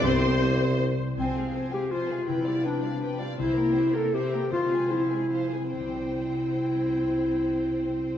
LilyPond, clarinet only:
\new Staff \with { instrumentName = "Clarinet" } { \time 3/4 \key c \major \tempo 4 = 159 r2. | c'4. g'8 f'4 | e'4 d'4. r8 | e'4. a'8 g'4 |
f'4 e'4. r8 | e'2.~ | e'2. | }